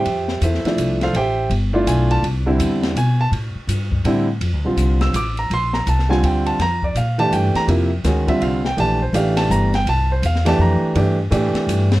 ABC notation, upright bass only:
X:1
M:3/4
L:1/8
Q:"Swing" 1/4=165
K:Am
V:1 name="Upright bass" clef=bass
F,,2 E,, z C,,2 | A,,,2 G,,,2 B,,,2 | C,,2 E,,2 B,,2 | A,, z G,,2 A,,2 |
[K:Bblyd] (3F,, D,, B,,, C,,2 A,,,2 | B,,,2 C,,2 D,,2 | F,,2 B,,2 G,, z | F,,2 D,,2 C,,2 |
B,,,2 A,,,2 G,,,2 | C,,2 E,,2 F,, z | G,,2 A,, z G,,2 |]